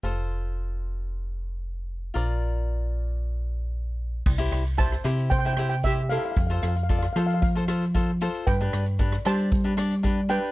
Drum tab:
CC |----------------|----------------|x---------------|----------------|
HH |----------------|----------------|--xxx-xxx-xxx-xx|x-xxx-xxx-xxx-xx|
SD |----------------|----------------|--r--rr---r-----|--r--rr---r-----|
BD |----------------|----------------|o---o---o---o---|o---o---o---o---|

CC |----------------|
HH |x-xxx-xxx-xxx-xx|
SD |--r--rr---r-----|
BD |o---o---o---o---|